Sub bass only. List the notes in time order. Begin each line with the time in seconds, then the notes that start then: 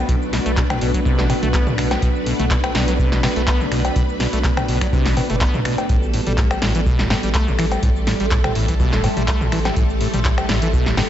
0.09 B1
0.46 B1
0.81 B1
1.19 A1
1.43 B1
1.67 B1
2.02 B1
2.39 B1
2.75 B1
3.12 A1
3.36 B1
3.60 B1
3.96 B1
4.33 B1
4.68 B1
5.06 A1
5.30 F#1
5.54 B1
5.89 A1
6.27 A1
6.62 A1
6.99 G1
7.23 A1
7.48 A1
7.83 A1
8.20 A1
8.55 A1
8.93 G1
9.17 A1
9.41 A1
9.76 A1
10.13 A1
10.49 A1
10.86 G1